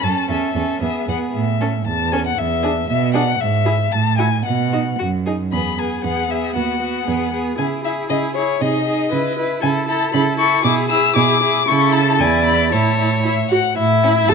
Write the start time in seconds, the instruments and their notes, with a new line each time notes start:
0.03 cello F#2, viola C#4, violin A4 A5
0.29 cello E2, viola C#4, violin A4 E5
0.56 cello E2, viola C#4, violin A4
0.82 cello E2, viola B3, violin G#4 E5
1.08 cello E2, viola B3, violin G#4 F#5
1.34 cello A2, violin E5
1.61 viola C#4, violin A4
1.86 cello E2, violin A5
2.12 viola C#4, violin A4 G#5
2.27 violin F#5
2.37 cello E2, violin E5
2.63 viola D4, violin G#4
2.89 cello B2, violin E5
3.14 viola D4, violin G#4 F#5
3.40 cello G#2, violin E5
3.65 viola E4, violin G#4
3.92 cello A2, violin A5
4.18 viola E4, violin F#4 G#5
4.46 cello B2, violin F#5
4.72 viola D#4, violin F#4
4.99 cello F#2, violin F#4
5.26 viola D#4, violin G#4
5.52 cello E2, viola B3, violin G#4 B5
5.78 viola B3, violin G#4 G#5
6.04 cello E2, viola B3, violin G#4 F#5
6.30 viola B3, violin G#4 E5
6.55 cello D#2, viola B3, violin F#4 F#5
6.80 viola B3, violin F#4
7.06 cello E2, viola B3, violin G#4
7.33 viola B3, violin G#4
7.58 cello C#3, viola E4, violin G#4 G#5
7.84 viola E4, violin G#4 E5
8.09 cello C#3, viola E4, violin G#4 D#5
8.35 viola E4, violin G#4 C#5
8.61 cello C3, viola D#4, violin G#4 D#5
8.87 viola D#4, violin G#4
9.12 cello C#3, viola E4, violin B4
9.37 viola E4, violin B4
9.62 cello C#3, viola E4, violin A4 G#5
9.87 viola E4, violin A4 A5
10.13 cello C#3, viola E4, violin A4 B5
10.38 viola E4, violin A4 C#6
10.63 cello B2, viola E4, violin G#4 D6
10.90 viola E4, violin G#4 E6
11.16 cello B2, viola E4, violin G#4 D6
11.42 viola E4, violin G#4
11.67 cello C#3, viola E4, violin A4 C#6
11.93 violin A5
12.20 cello E2, viola E4, violin D5 G#5
12.46 violin B5
12.72 cello A2, viola E4, violin C#5 A5
13.25 viola E4, violin E5
13.51 viola F#4, violin F#5
13.78 cello A2, viola E4, violin E5
14.03 violin C#4
14.28 cello E2, viola A4, violin A5